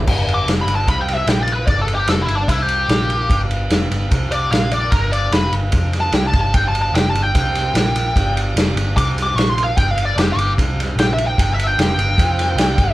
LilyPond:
<<
  \new Staff \with { instrumentName = "Lead electric guitar" } { \time 4/4 \key g \mixolydian \tempo 4 = 148 \tuplet 3/2 { r4 d'''8 r8 b''8 a''8 b''8 g''8 e''8 g''8 d''8 b'8 } | \tuplet 3/2 { d''8 a'8 g'8 a'8 e'8 d'8 e'8 g'4~ } g'4~ | g'8 r2 d''8 f''8 d''8 | bes'8 d''8 b'8 r8 \tuplet 3/2 { r4 a''8 g''8 a''8 a''8 } |
\tuplet 3/2 { g''8 a''8 a''8 g''8 a''8 g''8~ } g''2~ | g''8 r4. \tuplet 3/2 { d'''8 r8 d'''8 cis'''8 c'''8 f''8 } | \tuplet 3/2 { g''8 f''8 d''8 g'8 g'8. r16 } r4 \tuplet 3/2 { g''8 e''8 g''8 } | \tuplet 3/2 { g''8 e''8 g''8 } g''2. | }
  \new Staff \with { instrumentName = "Tonewheel organ" } { \time 4/4 \key g \mixolydian <b d' g' d''>2 <c' g' c''>4 <bes f' bes'>4 | <g b d' b'>2 <c' g' c''>4 <bes f' bes'>4 | <g b d' b'>2 <c' g' c''>4 <bes f' bes'>4 | <g b d' b'>2 <c' f' c''>4 <b d' g' d''>4~ |
<b d' g' d''>2 <c' g' c''>4 <bes f' bes'>4 | <b d' g' d''>2 <c' g' c''>4 <bes f' bes'>4 | <g b d' b'>2 <c' g' c''>4 <bes f' bes'>4 | <g b d' b'>2 <c' f' c''>4 <b d' g' d''>4 | }
  \new Staff \with { instrumentName = "Picked electric bass" } { \clef bass \time 4/4 \key g \mixolydian g,,4 f,,8 g,,8 c,4 bes,,4 | g,,4 f,,8 g,,8 c,4 bes,,4 | g,,4 f,,8 g,,8 c,4 bes,,4 | g,,4 f,,8 g,,8 f,4 c,8 g,,8 |
g,,4 f,,8 g,,8 c,4 bes,,4 | g,,4 f,,8 g,,8 c,4 bes,,4 | g,,4 f,,8 g,,8 c,4 bes,,4 | g,,4 f,,8 g,,8 f,4 c,8 g,,8 | }
  \new DrumStaff \with { instrumentName = "Drums" } \drummode { \time 4/4 <cymc bd>8 cymr8 <cymr sn>8 cymr8 <bd cymr>8 <cymr sn>8 <cymr sn>8 cymr8 | <bd cymr>8 cymr8 <cymr sn>8 cymr8 <bd cymr>8 cymr8 <cymr sn>8 cymr8 | <bd cymr>8 cymr8 <cymr sn>8 cymr8 <bd cymr>8 cymr8 <cymr sn>8 cymr8 | <bd cymr>8 cymr8 <cymr sn>8 cymr8 <bd cymr>8 <cymr sn>8 <cymr sn>8 <bd cymr>8 |
<bd cymr>8 cymr8 <cymr sn>8 cymr8 <bd cymr>8 <cymr sn>8 <cymr sn>8 cymr8 | <bd cymr>8 cymr8 <cymr sn>8 cymr8 <bd cymr>8 <cymr sn>8 <cymr sn>8 cymr8 | <bd cymr>8 cymr8 <cymr sn>8 cymr8 <bd cymr>8 <cymr sn>8 <cymr sn>8 cymr8 | <bd cymr>8 cymr8 <cymr sn>8 cymr8 <bd cymr>8 <cymr sn>8 <cymr sn>8 <bd cymr>8 | }
>>